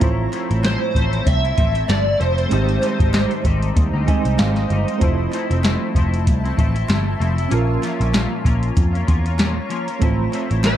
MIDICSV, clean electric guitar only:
0, 0, Header, 1, 2, 480
1, 0, Start_track
1, 0, Key_signature, -1, "major"
1, 0, Tempo, 625130
1, 11, Time_signature, 4, 2, 24, 8
1, 8270, End_track
2, 0, Start_track
2, 0, Title_t, "Clean electric guitar"
2, 0, Program_c, 0, 27
2, 11, Note_on_c, 0, 45, 89
2, 18, Note_on_c, 0, 53, 102
2, 20, Note_on_c, 0, 57, 104
2, 23, Note_on_c, 0, 60, 88
2, 26, Note_on_c, 0, 64, 96
2, 240, Note_off_c, 0, 53, 0
2, 249, Note_off_c, 0, 57, 0
2, 249, Note_on_c, 0, 53, 74
2, 251, Note_off_c, 0, 45, 0
2, 255, Note_off_c, 0, 60, 0
2, 258, Note_off_c, 0, 64, 0
2, 259, Note_on_c, 0, 57, 72
2, 264, Note_on_c, 0, 60, 79
2, 269, Note_on_c, 0, 64, 75
2, 375, Note_off_c, 0, 64, 0
2, 382, Note_off_c, 0, 53, 0
2, 384, Note_off_c, 0, 60, 0
2, 384, Note_on_c, 0, 64, 62
2, 387, Note_off_c, 0, 57, 0
2, 394, Note_on_c, 0, 60, 55
2, 405, Note_on_c, 0, 57, 46
2, 488, Note_off_c, 0, 57, 0
2, 489, Note_on_c, 0, 45, 79
2, 491, Note_off_c, 0, 60, 0
2, 491, Note_off_c, 0, 64, 0
2, 494, Note_on_c, 0, 53, 79
2, 498, Note_on_c, 0, 57, 84
2, 501, Note_on_c, 0, 60, 94
2, 503, Note_on_c, 0, 64, 96
2, 720, Note_off_c, 0, 53, 0
2, 727, Note_off_c, 0, 57, 0
2, 729, Note_on_c, 0, 53, 67
2, 730, Note_off_c, 0, 45, 0
2, 734, Note_off_c, 0, 60, 0
2, 737, Note_off_c, 0, 64, 0
2, 737, Note_on_c, 0, 57, 72
2, 743, Note_on_c, 0, 60, 70
2, 750, Note_on_c, 0, 64, 70
2, 1093, Note_off_c, 0, 64, 0
2, 1102, Note_off_c, 0, 53, 0
2, 1102, Note_on_c, 0, 64, 56
2, 1106, Note_off_c, 0, 57, 0
2, 1107, Note_off_c, 0, 60, 0
2, 1116, Note_on_c, 0, 60, 53
2, 1125, Note_on_c, 0, 57, 41
2, 1207, Note_off_c, 0, 57, 0
2, 1207, Note_on_c, 0, 53, 67
2, 1211, Note_off_c, 0, 64, 0
2, 1216, Note_on_c, 0, 57, 68
2, 1217, Note_off_c, 0, 60, 0
2, 1225, Note_on_c, 0, 60, 64
2, 1229, Note_on_c, 0, 64, 71
2, 1327, Note_off_c, 0, 64, 0
2, 1336, Note_on_c, 0, 64, 62
2, 1341, Note_off_c, 0, 53, 0
2, 1341, Note_off_c, 0, 60, 0
2, 1345, Note_off_c, 0, 57, 0
2, 1350, Note_on_c, 0, 60, 52
2, 1360, Note_on_c, 0, 57, 47
2, 1448, Note_off_c, 0, 57, 0
2, 1448, Note_off_c, 0, 64, 0
2, 1450, Note_on_c, 0, 45, 82
2, 1451, Note_off_c, 0, 60, 0
2, 1453, Note_on_c, 0, 53, 83
2, 1457, Note_on_c, 0, 57, 93
2, 1461, Note_on_c, 0, 60, 86
2, 1463, Note_on_c, 0, 64, 98
2, 1570, Note_off_c, 0, 64, 0
2, 1579, Note_on_c, 0, 64, 50
2, 1583, Note_off_c, 0, 45, 0
2, 1583, Note_off_c, 0, 60, 0
2, 1584, Note_off_c, 0, 53, 0
2, 1586, Note_off_c, 0, 57, 0
2, 1592, Note_on_c, 0, 60, 51
2, 1599, Note_on_c, 0, 57, 44
2, 1685, Note_off_c, 0, 57, 0
2, 1685, Note_on_c, 0, 53, 75
2, 1689, Note_off_c, 0, 60, 0
2, 1689, Note_off_c, 0, 64, 0
2, 1694, Note_on_c, 0, 57, 66
2, 1699, Note_on_c, 0, 60, 74
2, 1705, Note_on_c, 0, 64, 73
2, 1928, Note_off_c, 0, 53, 0
2, 1930, Note_on_c, 0, 44, 87
2, 1931, Note_off_c, 0, 60, 0
2, 1933, Note_off_c, 0, 57, 0
2, 1934, Note_on_c, 0, 51, 81
2, 1936, Note_on_c, 0, 55, 91
2, 1938, Note_off_c, 0, 64, 0
2, 1940, Note_on_c, 0, 60, 86
2, 1943, Note_on_c, 0, 63, 82
2, 2160, Note_off_c, 0, 51, 0
2, 2168, Note_off_c, 0, 55, 0
2, 2169, Note_on_c, 0, 51, 64
2, 2170, Note_off_c, 0, 44, 0
2, 2176, Note_off_c, 0, 60, 0
2, 2177, Note_off_c, 0, 63, 0
2, 2177, Note_on_c, 0, 55, 73
2, 2186, Note_on_c, 0, 60, 73
2, 2191, Note_on_c, 0, 63, 71
2, 2287, Note_off_c, 0, 63, 0
2, 2296, Note_on_c, 0, 63, 63
2, 2298, Note_off_c, 0, 60, 0
2, 2302, Note_off_c, 0, 51, 0
2, 2306, Note_off_c, 0, 55, 0
2, 2307, Note_on_c, 0, 60, 55
2, 2316, Note_on_c, 0, 55, 57
2, 2406, Note_off_c, 0, 55, 0
2, 2407, Note_off_c, 0, 63, 0
2, 2407, Note_on_c, 0, 44, 93
2, 2411, Note_off_c, 0, 60, 0
2, 2414, Note_on_c, 0, 51, 93
2, 2415, Note_on_c, 0, 55, 110
2, 2421, Note_on_c, 0, 60, 110
2, 2422, Note_on_c, 0, 63, 110
2, 2636, Note_off_c, 0, 51, 0
2, 2645, Note_on_c, 0, 51, 80
2, 2646, Note_off_c, 0, 55, 0
2, 2649, Note_off_c, 0, 44, 0
2, 2651, Note_off_c, 0, 60, 0
2, 2655, Note_on_c, 0, 55, 82
2, 2657, Note_off_c, 0, 63, 0
2, 2660, Note_on_c, 0, 60, 80
2, 2668, Note_on_c, 0, 63, 82
2, 3011, Note_off_c, 0, 63, 0
2, 3020, Note_off_c, 0, 51, 0
2, 3021, Note_on_c, 0, 63, 64
2, 3025, Note_off_c, 0, 55, 0
2, 3028, Note_off_c, 0, 60, 0
2, 3036, Note_on_c, 0, 60, 54
2, 3045, Note_on_c, 0, 55, 53
2, 3124, Note_on_c, 0, 51, 79
2, 3127, Note_off_c, 0, 55, 0
2, 3130, Note_off_c, 0, 63, 0
2, 3131, Note_off_c, 0, 60, 0
2, 3136, Note_on_c, 0, 55, 79
2, 3141, Note_on_c, 0, 60, 86
2, 3148, Note_on_c, 0, 63, 73
2, 3248, Note_off_c, 0, 63, 0
2, 3257, Note_on_c, 0, 63, 65
2, 3260, Note_off_c, 0, 51, 0
2, 3260, Note_off_c, 0, 60, 0
2, 3266, Note_off_c, 0, 55, 0
2, 3270, Note_on_c, 0, 60, 61
2, 3280, Note_on_c, 0, 55, 53
2, 3368, Note_off_c, 0, 55, 0
2, 3368, Note_off_c, 0, 63, 0
2, 3369, Note_on_c, 0, 44, 89
2, 3371, Note_off_c, 0, 60, 0
2, 3373, Note_on_c, 0, 51, 90
2, 3377, Note_on_c, 0, 55, 97
2, 3380, Note_on_c, 0, 60, 103
2, 3382, Note_on_c, 0, 63, 94
2, 3492, Note_off_c, 0, 63, 0
2, 3501, Note_on_c, 0, 63, 62
2, 3502, Note_off_c, 0, 44, 0
2, 3504, Note_off_c, 0, 51, 0
2, 3504, Note_off_c, 0, 60, 0
2, 3506, Note_off_c, 0, 55, 0
2, 3513, Note_on_c, 0, 60, 55
2, 3524, Note_on_c, 0, 55, 54
2, 3608, Note_on_c, 0, 51, 73
2, 3610, Note_off_c, 0, 63, 0
2, 3611, Note_off_c, 0, 55, 0
2, 3614, Note_off_c, 0, 60, 0
2, 3620, Note_on_c, 0, 55, 73
2, 3623, Note_on_c, 0, 60, 72
2, 3630, Note_on_c, 0, 63, 79
2, 3736, Note_off_c, 0, 63, 0
2, 3741, Note_off_c, 0, 51, 0
2, 3745, Note_on_c, 0, 63, 66
2, 3746, Note_off_c, 0, 60, 0
2, 3747, Note_off_c, 0, 55, 0
2, 3755, Note_on_c, 0, 60, 52
2, 3769, Note_on_c, 0, 55, 48
2, 3851, Note_on_c, 0, 53, 89
2, 3852, Note_off_c, 0, 63, 0
2, 3853, Note_off_c, 0, 60, 0
2, 3855, Note_off_c, 0, 55, 0
2, 3858, Note_on_c, 0, 57, 79
2, 3862, Note_on_c, 0, 60, 79
2, 3869, Note_on_c, 0, 64, 108
2, 4082, Note_off_c, 0, 53, 0
2, 4090, Note_off_c, 0, 57, 0
2, 4091, Note_on_c, 0, 53, 65
2, 4097, Note_off_c, 0, 60, 0
2, 4099, Note_on_c, 0, 57, 75
2, 4100, Note_off_c, 0, 64, 0
2, 4107, Note_on_c, 0, 60, 69
2, 4112, Note_on_c, 0, 64, 81
2, 4211, Note_off_c, 0, 64, 0
2, 4221, Note_on_c, 0, 64, 57
2, 4223, Note_off_c, 0, 53, 0
2, 4226, Note_off_c, 0, 60, 0
2, 4227, Note_off_c, 0, 57, 0
2, 4235, Note_on_c, 0, 60, 62
2, 4245, Note_on_c, 0, 57, 52
2, 4326, Note_off_c, 0, 57, 0
2, 4327, Note_on_c, 0, 53, 88
2, 4329, Note_off_c, 0, 60, 0
2, 4330, Note_off_c, 0, 64, 0
2, 4335, Note_on_c, 0, 57, 93
2, 4338, Note_on_c, 0, 60, 92
2, 4342, Note_on_c, 0, 64, 102
2, 4560, Note_off_c, 0, 53, 0
2, 4567, Note_off_c, 0, 57, 0
2, 4569, Note_on_c, 0, 53, 71
2, 4575, Note_off_c, 0, 60, 0
2, 4576, Note_off_c, 0, 64, 0
2, 4576, Note_on_c, 0, 57, 77
2, 4583, Note_on_c, 0, 60, 79
2, 4593, Note_on_c, 0, 64, 82
2, 4935, Note_off_c, 0, 64, 0
2, 4942, Note_off_c, 0, 53, 0
2, 4943, Note_off_c, 0, 60, 0
2, 4944, Note_on_c, 0, 64, 56
2, 4946, Note_off_c, 0, 57, 0
2, 4953, Note_on_c, 0, 60, 58
2, 4964, Note_on_c, 0, 57, 47
2, 5046, Note_on_c, 0, 53, 77
2, 5047, Note_off_c, 0, 57, 0
2, 5051, Note_off_c, 0, 64, 0
2, 5053, Note_off_c, 0, 60, 0
2, 5056, Note_on_c, 0, 57, 80
2, 5062, Note_on_c, 0, 60, 83
2, 5068, Note_on_c, 0, 64, 81
2, 5167, Note_off_c, 0, 64, 0
2, 5176, Note_on_c, 0, 64, 60
2, 5179, Note_off_c, 0, 60, 0
2, 5180, Note_off_c, 0, 53, 0
2, 5186, Note_off_c, 0, 57, 0
2, 5189, Note_on_c, 0, 60, 62
2, 5197, Note_on_c, 0, 57, 51
2, 5281, Note_off_c, 0, 57, 0
2, 5285, Note_on_c, 0, 53, 99
2, 5286, Note_off_c, 0, 60, 0
2, 5288, Note_off_c, 0, 64, 0
2, 5290, Note_on_c, 0, 57, 104
2, 5295, Note_on_c, 0, 60, 110
2, 5299, Note_on_c, 0, 64, 107
2, 5406, Note_off_c, 0, 64, 0
2, 5415, Note_on_c, 0, 64, 53
2, 5418, Note_off_c, 0, 60, 0
2, 5420, Note_off_c, 0, 53, 0
2, 5423, Note_off_c, 0, 57, 0
2, 5427, Note_on_c, 0, 60, 58
2, 5437, Note_on_c, 0, 57, 50
2, 5520, Note_off_c, 0, 57, 0
2, 5522, Note_on_c, 0, 53, 71
2, 5527, Note_off_c, 0, 64, 0
2, 5528, Note_off_c, 0, 60, 0
2, 5530, Note_on_c, 0, 57, 75
2, 5537, Note_on_c, 0, 60, 81
2, 5544, Note_on_c, 0, 64, 80
2, 5646, Note_off_c, 0, 64, 0
2, 5655, Note_on_c, 0, 64, 58
2, 5658, Note_off_c, 0, 53, 0
2, 5659, Note_off_c, 0, 60, 0
2, 5662, Note_off_c, 0, 57, 0
2, 5668, Note_on_c, 0, 60, 53
2, 5674, Note_on_c, 0, 57, 47
2, 5763, Note_on_c, 0, 46, 85
2, 5767, Note_off_c, 0, 64, 0
2, 5767, Note_on_c, 0, 53, 96
2, 5770, Note_off_c, 0, 57, 0
2, 5770, Note_off_c, 0, 60, 0
2, 5773, Note_on_c, 0, 58, 88
2, 5774, Note_on_c, 0, 61, 100
2, 5779, Note_on_c, 0, 65, 101
2, 5995, Note_off_c, 0, 53, 0
2, 6004, Note_on_c, 0, 53, 67
2, 6005, Note_off_c, 0, 58, 0
2, 6007, Note_off_c, 0, 46, 0
2, 6012, Note_off_c, 0, 61, 0
2, 6014, Note_on_c, 0, 58, 80
2, 6015, Note_off_c, 0, 65, 0
2, 6021, Note_on_c, 0, 61, 77
2, 6027, Note_on_c, 0, 65, 79
2, 6126, Note_off_c, 0, 65, 0
2, 6135, Note_on_c, 0, 65, 67
2, 6139, Note_off_c, 0, 53, 0
2, 6140, Note_off_c, 0, 61, 0
2, 6144, Note_off_c, 0, 58, 0
2, 6149, Note_on_c, 0, 61, 53
2, 6157, Note_on_c, 0, 58, 55
2, 6244, Note_off_c, 0, 58, 0
2, 6247, Note_off_c, 0, 65, 0
2, 6247, Note_on_c, 0, 46, 99
2, 6248, Note_off_c, 0, 61, 0
2, 6250, Note_on_c, 0, 53, 96
2, 6254, Note_on_c, 0, 58, 94
2, 6258, Note_on_c, 0, 61, 96
2, 6263, Note_on_c, 0, 65, 114
2, 6472, Note_off_c, 0, 53, 0
2, 6480, Note_off_c, 0, 58, 0
2, 6482, Note_on_c, 0, 53, 69
2, 6486, Note_off_c, 0, 61, 0
2, 6489, Note_off_c, 0, 46, 0
2, 6489, Note_on_c, 0, 58, 77
2, 6496, Note_on_c, 0, 61, 79
2, 6497, Note_off_c, 0, 65, 0
2, 6506, Note_on_c, 0, 65, 75
2, 6845, Note_off_c, 0, 65, 0
2, 6854, Note_on_c, 0, 65, 65
2, 6858, Note_off_c, 0, 53, 0
2, 6858, Note_off_c, 0, 61, 0
2, 6862, Note_off_c, 0, 58, 0
2, 6867, Note_on_c, 0, 61, 55
2, 6877, Note_on_c, 0, 58, 45
2, 6963, Note_off_c, 0, 58, 0
2, 6966, Note_on_c, 0, 53, 77
2, 6967, Note_off_c, 0, 65, 0
2, 6970, Note_off_c, 0, 61, 0
2, 6973, Note_on_c, 0, 58, 72
2, 6979, Note_on_c, 0, 61, 84
2, 6988, Note_on_c, 0, 65, 90
2, 7088, Note_off_c, 0, 65, 0
2, 7097, Note_on_c, 0, 65, 71
2, 7100, Note_off_c, 0, 53, 0
2, 7100, Note_off_c, 0, 61, 0
2, 7104, Note_off_c, 0, 58, 0
2, 7109, Note_on_c, 0, 61, 62
2, 7119, Note_on_c, 0, 58, 48
2, 7205, Note_on_c, 0, 46, 93
2, 7206, Note_off_c, 0, 58, 0
2, 7208, Note_off_c, 0, 65, 0
2, 7210, Note_off_c, 0, 61, 0
2, 7210, Note_on_c, 0, 53, 97
2, 7215, Note_on_c, 0, 58, 104
2, 7219, Note_on_c, 0, 61, 92
2, 7223, Note_on_c, 0, 65, 113
2, 7329, Note_off_c, 0, 65, 0
2, 7339, Note_off_c, 0, 61, 0
2, 7339, Note_on_c, 0, 65, 57
2, 7340, Note_off_c, 0, 46, 0
2, 7342, Note_off_c, 0, 53, 0
2, 7345, Note_off_c, 0, 58, 0
2, 7349, Note_on_c, 0, 61, 52
2, 7357, Note_on_c, 0, 58, 53
2, 7443, Note_on_c, 0, 53, 79
2, 7445, Note_off_c, 0, 58, 0
2, 7449, Note_off_c, 0, 65, 0
2, 7451, Note_off_c, 0, 61, 0
2, 7454, Note_on_c, 0, 58, 83
2, 7460, Note_on_c, 0, 61, 83
2, 7468, Note_on_c, 0, 65, 87
2, 7572, Note_off_c, 0, 65, 0
2, 7579, Note_off_c, 0, 53, 0
2, 7582, Note_on_c, 0, 65, 63
2, 7584, Note_off_c, 0, 61, 0
2, 7585, Note_off_c, 0, 58, 0
2, 7593, Note_on_c, 0, 61, 54
2, 7604, Note_on_c, 0, 58, 47
2, 7686, Note_on_c, 0, 45, 92
2, 7690, Note_off_c, 0, 65, 0
2, 7692, Note_on_c, 0, 53, 93
2, 7693, Note_off_c, 0, 58, 0
2, 7696, Note_off_c, 0, 61, 0
2, 7697, Note_on_c, 0, 57, 82
2, 7700, Note_on_c, 0, 60, 91
2, 7703, Note_on_c, 0, 64, 106
2, 7917, Note_off_c, 0, 53, 0
2, 7925, Note_off_c, 0, 57, 0
2, 7926, Note_on_c, 0, 53, 73
2, 7929, Note_off_c, 0, 45, 0
2, 7930, Note_off_c, 0, 60, 0
2, 7934, Note_on_c, 0, 57, 77
2, 7937, Note_off_c, 0, 64, 0
2, 7939, Note_on_c, 0, 60, 68
2, 7946, Note_on_c, 0, 64, 87
2, 8049, Note_off_c, 0, 64, 0
2, 8058, Note_on_c, 0, 64, 55
2, 8060, Note_off_c, 0, 60, 0
2, 8061, Note_off_c, 0, 53, 0
2, 8065, Note_off_c, 0, 57, 0
2, 8069, Note_on_c, 0, 60, 53
2, 8081, Note_on_c, 0, 57, 45
2, 8167, Note_on_c, 0, 45, 74
2, 8169, Note_off_c, 0, 57, 0
2, 8169, Note_off_c, 0, 64, 0
2, 8172, Note_off_c, 0, 60, 0
2, 8175, Note_on_c, 0, 53, 77
2, 8178, Note_on_c, 0, 57, 91
2, 8181, Note_on_c, 0, 60, 99
2, 8185, Note_on_c, 0, 64, 99
2, 8270, Note_off_c, 0, 45, 0
2, 8270, Note_off_c, 0, 53, 0
2, 8270, Note_off_c, 0, 57, 0
2, 8270, Note_off_c, 0, 60, 0
2, 8270, Note_off_c, 0, 64, 0
2, 8270, End_track
0, 0, End_of_file